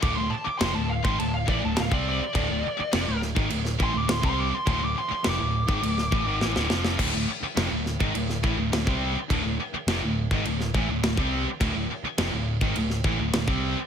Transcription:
<<
  \new Staff \with { instrumentName = "Lead electric guitar" } { \time 4/4 \key c \lydian \tempo 4 = 104 d'''16 c'''16 a''16 d'''16 c'''16 a''16 f''16 c'''16 a''16 f''16 d''16 a''16 f''16 d''16 d''8~ | d''4. r4 c'''16 d'''16 c'''16 c'''16 d'''16 c'''16 | c'''16 d'''16 c'''8 d'''2. | r1 |
r1 | r1 | }
  \new Staff \with { instrumentName = "Distorted electric guitar" } { \clef bass \time 4/4 \key c \lydian <d, a,>16 <d, a,>16 r8 <f, c>16 <d, a,>8 <gis, ees>16 <d, a,>8 <a, e>16 <d, a,>16 <d, a,>16 <c g c'>8 r16 | <d, a,>16 <d, a,>16 r8 <f, c>16 <d, a,>8 <gis, ees>16 <d, a,>8 <a, e>16 <d, a,>16 <d, a,>16 <c g c'>8 r16 | <d, a,>16 <d, a,>16 r8 <f, c>16 <d, a,>8 <gis, ees>16 <d, a,>8 <a, e>16 <gis, ees>16 <a, e>16 <d, a,>16 <f, c f>8 | <d, a,>16 <d, a,>16 r8 <f, c>16 <d, a,>8 <gis, ees>16 <d, a,>8 <a, e>16 <d, a,>16 <d, a,>16 <c g c'>8 r16 |
<d, a,>16 <d, a,>16 r8 <f, c>16 <d, a,>8 <gis, ees>16 <d, a,>8 <a, e>16 <d, a,>16 <d, a,>16 <c g c'>8 r16 | <d, a,>16 <d, a,>16 r8 <f, c>16 <d, a,>8 <gis, ees>16 <d, a,>8 <a, e>16 <d, a,>16 <d, a,>16 <c g c'>8 r16 | }
  \new Staff \with { instrumentName = "Distorted electric guitar" } { \clef bass \time 4/4 \key c \lydian <d, a,>16 <d, a,>16 r8 <f, c>16 <d, a,>8 <gis, ees>16 <d, a,>8 <a, e>16 <d, a,>16 <d, a,>16 <c g c'>8 r16 | <d, a,>16 <d, a,>16 r8 <f, c>16 <d, a,>8 <gis, ees>16 <d, a,>8 <a, e>16 <d, a,>16 <d, a,>16 <c g c'>8 r16 | <d, a,>16 <d, a,>16 r8 <f, c>16 <d, a,>8 <gis, ees>16 <d, a,>8 <a, e>16 <gis, ees>16 <a, e>16 <d, a,>16 <f, c f>8 | <d, a,>16 <d, a,>16 r8 <f, c>16 <d, a,>8 <gis, ees>16 <d, a,>8 <a, e>16 <d, a,>16 <d, a,>16 <c g c'>8 r16 |
<d, a,>16 <d, a,>16 r8 <f, c>16 <d, a,>8 <gis, ees>16 <d, a,>8 <a, e>16 <d, a,>16 <d, a,>16 <c g c'>8 r16 | <d, a,>16 <d, a,>16 r8 <f, c>16 <d, a,>8 <gis, ees>16 <d, a,>8 <a, e>16 <d, a,>16 <d, a,>16 <c g c'>8 r16 | }
  \new Staff \with { instrumentName = "Distorted electric guitar" } { \clef bass \time 4/4 \key c \lydian <d, a,>16 <d, a,>16 r8 <f, c>16 <d, a,>8 <gis, ees>16 <d, a,>8 <a, e>16 <d, a,>16 <d, a,>16 <c g c'>8 r16 | <d, a,>16 <d, a,>16 r8 <f, c>16 <d, a,>8 <gis, ees>16 <d, a,>8 <a, e>16 <d, a,>16 <d, a,>16 <c g c'>8 r16 | <d, a,>16 <d, a,>16 r8 <f, c>16 <d, a,>8 <gis, ees>16 <d, a,>8 <a, e>16 <gis, ees>16 <a, e>16 <d, a,>16 <f, c f>8 | <d, a,>16 <d, a,>16 r8 <f, c>16 <d, a,>8 <gis, ees>16 <d, a,>8 <a, e>16 <d, a,>16 <d, a,>16 <c g c'>8 r16 |
<d, a,>16 <d, a,>16 r8 <f, c>16 <d, a,>8 <gis, ees>16 <d, a,>8 <a, e>16 <d, a,>16 <d, a,>16 <c g c'>8 r16 | <d, a,>16 <d, a,>16 r8 <f, c>16 <d, a,>8 <gis, ees>16 <d, a,>8 <a, e>16 <d, a,>16 <d, a,>16 <c g c'>8 r16 | }
  \new Staff \with { instrumentName = "Picked electric bass" } { \clef bass \time 4/4 \key c \lydian d,,16 d,,16 r8 f,,16 d,,8 gis,,16 d,,8 a,,16 d,,16 d,,16 c,8 r16 | d,,16 d,,16 r8 f,,16 d,,8 gis,,16 d,,8 a,,16 d,,16 d,,16 c,8 r16 | d,,16 d,,16 r8 f,,16 d,,8 gis,,16 d,,8 a,,16 gis,,16 a,,16 d,,16 f,,8 | d,,16 d,,16 r8 f,,16 d,,8 gis,,16 d,,8 a,,16 d,,16 d,,16 c,8 r16 |
d,,16 d,,16 r8 f,,16 d,,8 gis,,16 d,,8 a,,16 d,,16 d,,16 c,8 r16 | d,,16 d,,16 r8 f,,16 d,,8 gis,,16 d,,8 a,,16 d,,16 d,,16 c,8 r16 | }
  \new DrumStaff \with { instrumentName = "Drums" } \drummode { \time 4/4 <cymc bd>4 <cymc sn>8. bd16 cymc8 bd8 <cymc sn>16 bd8. | <cymc bd>4 <cymc sn>8 sn16 bd16 cymc16 sn16 bd8 <cymc sn>16 bd8. | <cymc bd>4 <cymc sn>8. bd16 cymc16 sn16 bd8 sn16 sn16 sn16 sn16 | <cymc bd>4 <cymc sn>8 sn16 bd16 cymc16 sn16 bd8 <cymc sn>16 bd8. |
<cymc bd>4 <cymc sn>8. bd16 cymc16 sn16 bd8 <cymc sn>16 bd8. | <cymc bd>4 <cymc sn>8. bd16 cymc16 sn16 bd8 <cymc sn>16 bd8. | }
>>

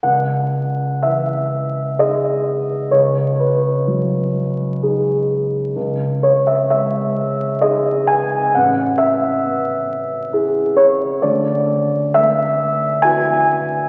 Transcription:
\new Staff \with { instrumentName = "Grand piano" } { \time 3/4 \key gis \minor \tempo 4 = 64 << { fis''4 e''4 dis''4 | cis''8 b'2 r8 | r8 cis''16 e''16 e''4 dis''8 gis''8 | fis''8 e''2 cis''8 |
d''4 e''4 gis''4 | } \\ { cis,4 e4 <dis' gis'>4 | cis,4 fis4 <dis' gis'>4 | cis,4 gis4 <dis' gis'>4 | a,,4 b4 <e' gis'>4 |
d,4 a4 <e' fis'>4 | } >> }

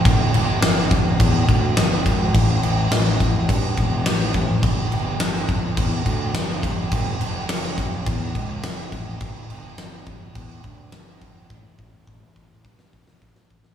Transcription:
<<
  \new Staff \with { instrumentName = "Fingered electric bass" } { \clef bass \time 4/4 \key a \mixolydian \tempo 4 = 105 g,,8 g,,8 g,,8 g,,8 e,8 d,8 g,,8 aes,,8 | a,,8 a,,8 a,,8 a,,8 g,8 e,,8 a,,8 a,,8 | g,,8 g,,8 g,,8 g,,8 e,8 d,8 g,,8 g,,8 | fis,,8 fis,,8 fis,,8 fis,,8 e,8 cis,8 fis,,8 a,,8 |
g,,8 g,,8 g,,8 g,,8 e,8 d,8 g,,8 g,,8 | a,,8 a,,8 a,,8 a,,8 g,8 e,,8 a,,8 a,,8 | }
  \new DrumStaff \with { instrumentName = "Drums" } \drummode { \time 4/4 <cymc bd>8 cymc8 <cymc sn>8 <cymc bd>8 <cymc bd>8 <cymc bd>8 <cymc sn>8 <cymc bd>8 | <cymc bd>8 cymc8 <cymc sn>8 <cymc bd>8 <cymc bd>8 <cymc bd>8 <cymc sn>8 <cymc bd>8 | <cymc bd>8 cymc8 <cymc sn>8 <cymc bd>8 <cymc bd>8 <cymc bd>8 <cymc sn>8 <cymc bd>8 | <cymc bd>8 cymc8 <cymc sn>8 <cymc bd>8 <cymc bd>8 <cymc bd>8 <cymc sn>8 <cymc bd>8 |
<cymc bd>8 cymc8 <cymc sn>8 <cymc bd>8 <cymc bd>8 <cymc bd>8 <cymc sn>8 <cymc bd>8 | bd8 bd8 bd8 bd8 bd16 sn16 bd16 sn16 bd16 sn16 bd16 sn16 | }
>>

